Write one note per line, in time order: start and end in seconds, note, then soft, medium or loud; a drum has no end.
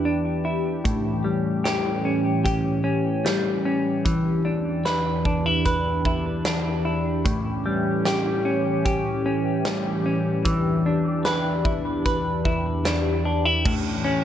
0.00 0.82 E2 medium
0.00 1.15 E3 medium
0.00 7.21 E3 medium
0.00 0.35 G3 medium
0.00 0.82 D4 medium
0.00 0.44 E4 medium
0.00 7.21 G4 medium
0.00 0.93 B4 medium
0.05 0.93 D4 soft
0.45 1.64 E4 medium
0.84 4.05 A2 medium
0.84 4.03 A2 medium
0.84 4.03 C#4 medium
0.84 kick medium
0.84 closed hi-hat medium
1.24 3.24 G3 medium
1.64 2.44 G4 medium
1.64 snare medium
1.64 closed hi-hat medium
2.05 2.83 C#4 medium
2.44 5.25 G4 medium
2.44 kick medium
2.44 closed hi-hat medium
2.84 3.64 C#4 medium
3.25 6.75 G3 medium
3.25 snare medium
3.25 closed hi-hat medium
3.65 4.13 C#4 medium
4.05 7.22 E2 medium
4.05 7.55 E3 medium
4.05 7.23 D4 medium
4.05 kick loud
4.05 closed hi-hat medium
4.45 5.24 D4 medium
4.85 5.64 B4 medium
4.85 snare medium
4.85 closed hi-hat medium
5.25 5.46 D4 medium
5.25 kick medium
5.46 6.05 E4 soft
5.65 7.33 B4 medium
5.65 kick medium
5.65 closed hi-hat medium
6.05 6.85 E4 medium
6.05 kick medium
6.45 7.33 D4 soft
6.45 snare medium
6.45 closed hi-hat medium
6.85 8.05 E4 medium
7.25 10.45 A2 medium
7.25 10.42 A2 medium
7.25 13.61 E3 medium
7.25 10.42 C#4 medium
7.25 13.62 G4 medium
7.25 kick loud
7.25 closed hi-hat medium
7.66 9.66 G3 medium
8.05 8.85 G4 medium
8.05 snare medium
8.05 closed hi-hat medium
8.45 9.25 C#4 medium
8.85 11.64 G4 medium
8.85 kick medium
8.85 closed hi-hat soft
9.26 10.05 C#4 medium
9.65 13.16 G3 soft
9.65 snare loud
9.65 closed hi-hat medium
10.06 10.54 C#4 soft
10.45 13.62 E2 medium
10.45 13.95 E3 medium
10.45 13.63 D4 medium
10.45 kick loud
10.45 closed hi-hat medium
10.86 12.84 D4 medium
11.25 12.04 B4 medium
11.25 snare medium
11.25 closed hi-hat medium
11.65 12.45 E4 medium
11.65 kick medium
12.05 13.74 B4 medium
12.05 kick medium
12.05 closed hi-hat medium
12.45 13.25 E4 medium
12.45 kick medium
12.85 13.24 D4 medium
12.85 snare loud
12.85 closed hi-hat medium
13.25 13.45 D4 medium
13.45 13.73 E4 soft
13.65 14.24 A2 medium
13.65 14.24 E3 medium
13.65 14.24 C#4 medium
13.65 14.24 G4 medium
13.65 kick loud
13.65 crash loud
14.04 14.24 C#4 medium